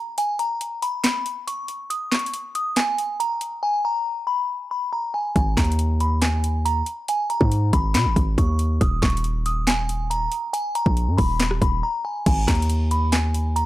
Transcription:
Already playing: synth bell A#5
0.18 synth bell G#5, closed hi-hat
0.39 synth bell A#5, closed hi-hat
0.61 closed hi-hat
0.82 synth bell B5, closed hi-hat
1.04 synth bell B5, snare, clap, closed hi-hat
1.26 closed hi-hat
1.47 synth bell C#6, closed hi-hat
1.68 closed hi-hat
1.90 synth bell D#6, closed hi-hat
2.11 synth bell C#6, snare, clap, closed hi-hat
2.19 closed hi-hat
2.26 closed hi-hat
2.34 closed hi-hat
2.55 synth bell D#6, closed hi-hat
2.76 synth bell G#5, snare, clap, closed hi-hat
2.98 closed hi-hat
3.20 synth bell A#5, closed hi-hat
3.41 closed hi-hat
3.63 synth bell G#5
3.85 synth bell A#5
4.27 synth bell B5
4.71 synth bell B5
4.93 synth bell A#5
5.14 synth bell G#5
5.36 808-style bass G#1, synth bell G#5, kick, closed hi-hat
5.57 808-style bass D#2, synth bell A#5, kick, snare, clap, closed hi-hat
5.64 closed hi-hat
5.72 closed hi-hat
5.79 closed hi-hat
6.00 synth bell B5, closed hi-hat
6.22 synth bell G#5, snare, clap, closed hi-hat
6.44 closed hi-hat
6.65 synth bell A#5, closed hi-hat
6.86 closed hi-hat
7.08 synth bell G#5, closed hi-hat
7.30 synth bell A#5, closed hi-hat
7.41 808-style bass G#2, kick
7.52 closed hi-hat
7.73 808-style bass G#1, synth bell B5, kick, closed hi-hat
7.94 808-style bass B2, synth bell B5, snare, clap, closed hi-hat
8.05 808-style bass G#1
8.16 808-style bass G#1, kick, closed hi-hat
8.38 808-style bass D#2, synth bell C#6, kick, closed hi-hat
8.59 closed hi-hat
8.81 808-style bass D#1, synth bell D#6, kick, closed hi-hat
9.02 808-style bass D#1, synth bell C#6, kick, snare, clap, closed hi-hat
9.10 closed hi-hat
9.17 closed hi-hat
9.24 closed hi-hat
9.46 synth bell D#6, closed hi-hat
9.67 synth bell G#5, snare, clap, closed hi-hat
9.89 closed hi-hat
10.10 synth bell A#5, closed hi-hat
10.32 closed hi-hat
10.53 synth bell G#5, closed hi-hat
10.75 synth bell A#5, closed hi-hat
10.86 808-style bass A#1, kick
10.97 closed hi-hat
11.08 808-style bass F#2
11.18 808-style bass D#1, synth bell B5, kick, open hi-hat
11.40 snare, clap, closed hi-hat
11.51 cross-stick
11.62 808-style bass D#1, synth bell B5, kick, closed hi-hat
11.83 synth bell A#5
12.05 synth bell G#5
12.26 808-style bass G#1, synth bell G#5, kick, closed hi-hat, crash
12.48 808-style bass D#2, synth bell A#5, kick, snare, clap, closed hi-hat
12.55 closed hi-hat
12.62 closed hi-hat
12.70 closed hi-hat
12.91 synth bell B5, closed hi-hat
13.12 synth bell G#5, snare, clap, closed hi-hat
13.34 closed hi-hat
13.56 synth bell A#5, closed hi-hat

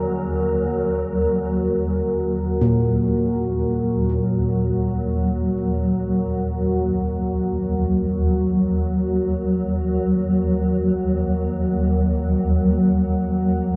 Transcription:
Already playing: synth drone D#2 F#3, kettle gongs D3 D5, ambient pad F#4 A#4 G#5
0.71 synth drone D#2 F#3
2.61 kettle gongs A#2
3.02 ambient pad F#5

